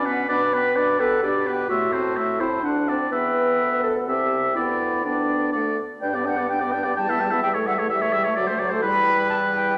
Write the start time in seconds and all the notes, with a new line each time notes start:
Already playing: B2 C#4
0.06 B3 B4 F#5
0.29 B2 D4 B4 D5 B5
0.53 B3 B4 G5
0.76 B2 D4 D5 B5
0.99 B3 A4 B4 G5
1.21 B2 D4 G4 D5 B5
1.46 B3 B4 G5
1.69 A2 A3 F#4 E5 C6
1.93 C4 C5 A5
2.16 A2 A3 E5 C6
2.40 C4 E4 C5 A5
2.63 D2 D4 F#5 C6
2.87 C4 D5 A5
3.11 E2 B3 B4 E5 G5
3.61 D2
3.83 A4
4.07 C2 C4 G4 E5 A5
4.55 D2 B3 E4 D5 G5
5.04 B3 D4 D5 G5
5.53 D2 A3 D5 F#5
6.01 G2 D4 B4 D5 G5
6.13 B3 G4 D5
6.25 D4 B4 F#5 G5
6.37 B3 G4 D5
6.49 D4 B4 G5
6.61 B3 G4 D5
6.72 D4 B4 G5
6.84 B3 G4 D5
6.95 E2 G3 G4 G5 A5
7.08 B3 E4 E5
7.19 G3 G4 G5
7.31 B3 E4 E5
7.42 G3 G4 E5 G5
7.54 A3 A4 C#5
7.66 G3 G4 E5 F#5
7.78 A3 A4 C#5
7.90 G3 G4 E5
8.01 A3 A4 C#5
8.13 G3 G4 E5
8.24 A3 A4 C#5
8.36 D2 F#3 F#4 D5
8.47 A3 A4 C5
8.59 F#3 F#4 D5
8.70 A3 A4 C5
8.82 E2 G3 E4 B4 B5
9.30 A5
9.54 G5